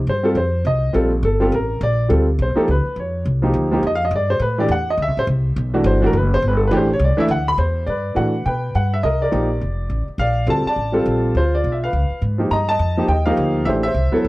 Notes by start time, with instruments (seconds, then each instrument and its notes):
0.07 upright bass G2, grand piano C5
0.23 grand piano G3 C4 F4 A4
0.28 grand piano G4
0.35 upright bass F2, grand piano C5
0.65 upright bass C2, grand piano D#5
0.93 upright bass A#1, grand piano G3 C4 F4 A4
1.23 upright bass G1, grand piano A4
1.40 grand piano G3 C4 F4 G4 A4
1.52 upright bass A1, grand piano A#4
1.81 upright bass A#1, grand piano D5
2.09 upright bass D2, grand piano G3 C4 F4 A4
2.39 upright bass B1, grand piano C5
2.55 grand piano F3 A#3 D#4 G4 A4, muted upright bass stroke
2.68 upright bass C#2, grand piano B4
2.86 muted upright bass stroke
2.96 upright bass F2, grand piano C#5
3.25 upright bass C2
3.42 grand piano F3 A#3 D#4 G4
3.54 upright bass D2
3.71 grand piano F3 A#3 D#4 G4
3.83 upright bass F2, grand piano D#5
3.95 grand piano F5
4.05 grand piano D#5
4.11 upright bass G2
4.16 grand piano D5
4.30 grand piano C5
4.39 upright bass A2, grand piano B4
4.58 grand piano E3 A3 D4 G4 D5
4.68 upright bass E2, grand piano F#5
4.90 grand piano D#5
4.98 upright bass D2
5.02 grand piano E5
5.07 upright bass C2
5.17 upright bass A1, grand piano C5
5.27 upright bass C2
5.56 upright bass B1
5.74 grand piano E3 A3 D4 F#4
5.84 upright bass G1, grand piano C5
6.02 grand piano E3 A3 D4 F#4
6.06 grand piano A#4
6.13 upright bass F#1, grand piano B4
6.34 grand piano C5
6.42 upright bass G1
6.48 grand piano B4
6.57 grand piano A4
6.67 upright bass A1, grand piano E3 A3 B4
6.72 grand piano D4 G4
6.77 grand piano C5
6.93 grand piano C#5
6.99 upright bass C2
7.04 grand piano D5
7.17 grand piano E3 A3 D4 E4 E5, muted upright bass stroke
7.28 upright bass D2, grand piano F#5
7.48 grand piano B5
7.58 upright bass E2, grand piano C5
7.86 upright bass G2, grand piano B4 D5
8.15 upright bass A2, grand piano E3 A3 D4 F#4 F#5
8.46 upright bass B2, grand piano B4 G5
8.75 upright bass G2, grand piano F#5
8.94 grand piano E5
9.03 upright bass C2, grand piano A#4 D#5
9.22 grand piano A#4 D5
9.31 upright bass A#1, grand piano F3 A#3 D#4 G4
9.61 upright bass F1
9.90 upright bass A1
10.08 muted upright bass stroke
10.18 upright bass A#1, grand piano D5 F5
10.47 upright bass D2, grand piano G3 C4 F4 A4 A5
10.65 grand piano D5 A5, muted upright bass stroke
10.76 upright bass A1
10.92 grand piano G3 C4 F4 A4
11.06 upright bass A#1
11.35 upright bass D2, grand piano F4 C5
11.55 grand piano D5
11.64 upright bass B1
11.72 grand piano E5
11.84 grand piano B4 F5
11.93 upright bass C#2
12.10 muted upright bass stroke
12.22 upright bass G#2
12.38 grand piano F3 A#3 D#4 G4
12.51 upright bass G2, grand piano D#5 A#5
12.69 grand piano D#5 A5
12.79 upright bass F2
12.97 grand piano F3 A#3 D#4 G4
13.08 upright bass D#2, grand piano D#5 G5
13.26 grand piano F3 A#3 D#4 G4 A#4 F5
13.37 upright bass D2
13.65 upright bass A1, grand piano E3 A3 D4 G4 C5 E5
13.83 grand piano E5
13.87 grand piano C5
13.94 upright bass C2
14.12 grand piano F#3 B3 E4 A4, muted upright bass stroke
14.25 upright bass D2